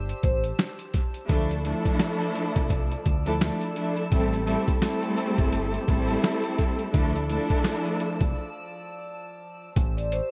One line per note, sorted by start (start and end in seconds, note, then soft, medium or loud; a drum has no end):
0.00 0.12 G1 medium
0.00 1.26 G4 medium
0.00 1.27 C5 medium
0.00 9.72 A5 medium
0.00 1.26 E6 medium
0.09 closed hi-hat medium
0.23 0.51 A1 medium
0.23 0.42 C5 medium
0.23 kick loud
0.23 closed hi-hat medium
0.44 closed hi-hat medium
0.59 snare loud
0.59 snare medium
0.59 closed hi-hat medium
0.79 closed hi-hat medium
0.94 kick medium
0.94 snare soft
0.94 closed hi-hat medium
1.14 closed hi-hat medium
1.27 1.72 D2 loud
1.27 1.61 F3 loud
1.27 4.09 F3 medium
1.27 1.61 A3 medium
1.27 1.62 D4 medium
1.27 1.62 E4 medium
1.27 1.63 A4 loud
1.27 4.09 D5 medium
1.27 6.90 E6 medium
1.27 kick loud
1.27 closed hi-hat loud
1.51 closed hi-hat medium
1.64 3.11 F3 loud
1.64 3.12 A3 medium
1.64 3.12 D4 loud
1.64 3.13 E4 loud
1.64 3.13 A4 loud
1.64 closed hi-hat medium
1.85 kick medium
1.85 closed hi-hat medium
1.99 snare loud
1.99 snare medium
1.99 closed hi-hat loud
2.20 closed hi-hat soft
2.35 closed hi-hat medium
2.56 2.94 C2 medium
2.56 kick loud
2.56 closed hi-hat medium
2.70 kick loud
2.70 closed hi-hat medium
2.92 closed hi-hat medium
3.06 3.49 D2 medium
3.06 kick medium
3.06 closed hi-hat medium
3.25 3.39 F3 medium
3.25 3.40 A3 medium
3.25 3.41 D4 medium
3.25 3.42 E4 medium
3.25 3.42 A4 loud
3.25 closed hi-hat medium
3.41 3.74 F3 medium
3.41 3.74 A3 medium
3.41 3.75 D4 medium
3.41 3.75 E4 medium
3.41 3.75 A4 medium
3.41 snare loud
3.41 snare medium
3.41 closed hi-hat medium
3.61 closed hi-hat medium
3.75 4.09 F3 medium
3.75 4.09 A3 medium
3.75 4.10 D4 medium
3.75 4.10 E4 medium
3.75 4.10 A4 medium
3.75 closed hi-hat medium
3.97 closed hi-hat soft
4.11 4.55 A1 loud
4.11 4.43 G3 medium
4.11 4.44 A3 medium
4.11 4.45 C4 medium
4.11 4.45 E4 medium
4.11 6.92 G4 medium
4.11 4.46 A4 loud
4.11 6.92 C5 medium
4.11 kick loud
4.11 closed hi-hat loud
4.33 closed hi-hat medium
4.44 4.79 G3 loud
4.44 4.79 A3 medium
4.44 4.79 C4 medium
4.44 4.80 E4 medium
4.44 4.80 A4 loud
4.44 closed hi-hat medium
4.68 kick medium
4.68 closed hi-hat medium
4.81 5.80 G3 loud
4.81 5.81 A3 loud
4.81 5.81 C4 medium
4.81 5.81 E4 medium
4.81 5.82 A4 loud
4.81 snare loud
4.81 snare medium
4.81 closed hi-hat loud
5.03 closed hi-hat soft
5.18 closed hi-hat medium
5.38 5.77 G1 medium
5.38 kick medium
5.38 closed hi-hat medium
5.52 closed hi-hat medium
5.74 closed hi-hat medium
5.88 6.15 A1 medium
5.88 6.87 G3 loud
5.88 6.87 A3 medium
5.88 6.88 C4 medium
5.88 6.88 E4 loud
5.88 6.88 A4 loud
5.88 kick loud
5.88 closed hi-hat medium
6.09 closed hi-hat medium
6.24 snare loud
6.24 snare medium
6.24 closed hi-hat medium
6.44 closed hi-hat medium
6.58 kick medium
6.58 snare soft
6.58 closed hi-hat medium
6.79 closed hi-hat medium
6.92 7.37 D2 loud
6.92 7.26 F3 loud
6.92 9.74 F3 medium
6.92 7.26 A3 medium
6.92 7.27 D4 medium
6.92 7.27 E4 medium
6.92 7.27 A4 loud
6.92 9.74 D5 medium
6.92 9.74 E6 medium
6.92 kick loud
6.92 closed hi-hat medium
7.16 closed hi-hat medium
7.29 8.35 F3 loud
7.29 8.36 A3 medium
7.29 8.36 D4 medium
7.29 8.36 E4 medium
7.29 8.37 A4 loud
7.29 closed hi-hat medium
7.50 kick medium
7.50 closed hi-hat medium
7.64 snare loud
7.64 snare medium
7.64 closed hi-hat loud
7.85 closed hi-hat soft
8.00 closed hi-hat medium
8.21 8.32 C2 medium
8.21 kick medium
8.21 closed hi-hat medium
9.76 10.19 A1 loud
9.76 10.31 G4 medium
9.76 10.31 C5 medium
9.76 10.31 A5 medium
9.76 10.31 E6 medium
9.76 kick loud
9.76 closed hi-hat medium
9.97 10.10 D5 medium
9.97 closed hi-hat medium
10.12 10.31 C5 medium
10.12 closed hi-hat medium